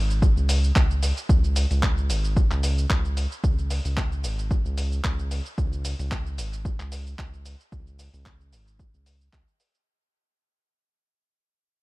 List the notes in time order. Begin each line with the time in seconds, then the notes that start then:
Already playing: G#1
0.10 cabasa
0.22 kick, cabasa
0.37 C#2, cabasa
0.49 open hi-hat, cabasa
0.64 cabasa
0.76 C#2, kick, clap, cabasa
0.91 cabasa
1.03 open hi-hat, cabasa
1.17 cabasa
1.29 C#2, kick, cabasa
1.44 cabasa
1.56 open hi-hat, cabasa
1.71 C#2, open hi-hat, cabasa
1.83 kick, clap, cabasa
1.98 cabasa
2.10 G#1, open hi-hat, cabasa
2.24 cabasa
2.37 kick, cabasa
2.51 C#2, clap, cabasa
2.63 open hi-hat, cabasa
2.78 cabasa
2.90 C#2, kick, clap, cabasa
3.05 cabasa
3.17 open hi-hat, cabasa
3.32 cabasa
3.44 C#2, kick, cabasa
3.58 cabasa
3.70 open hi-hat, cabasa
3.85 C#2, open hi-hat, cabasa
3.97 kick, clap, cabasa
4.12 cabasa
4.24 G#1, open hi-hat, cabasa
4.39 cabasa
4.51 kick, cabasa
4.65 C#2, cabasa
4.78 open hi-hat, cabasa
4.92 cabasa
5.04 C#2, kick, clap, cabasa
5.19 cabasa
5.31 open hi-hat, cabasa
5.46 cabasa
5.58 C#2, kick, cabasa
5.73 cabasa
5.85 open hi-hat, cabasa
5.99 C#2, open hi-hat, cabasa
6.12 kick, clap, cabasa
6.26 cabasa
6.38 G#1, open hi-hat, cabasa
6.53 cabasa
6.65 kick, cabasa
6.80 C#2, clap, cabasa
6.92 open hi-hat, cabasa
7.07 cabasa
7.19 C#2, kick, clap, cabasa
7.33 cabasa
7.46 open hi-hat, cabasa
7.60 cabasa
7.72 C#2, kick, cabasa
7.87 cabasa
7.99 open hi-hat, cabasa
8.14 C#2, open hi-hat, cabasa
8.26 kick, clap, cabasa
8.41 cabasa
8.53 G#1, open hi-hat, cabasa
8.67 cabasa
8.79 kick, cabasa
8.94 C#2, cabasa
9.06 open hi-hat, cabasa
9.21 cabasa
9.33 C#2, kick, clap, cabasa
9.48 cabasa
9.60 open hi-hat, cabasa
9.74 cabasa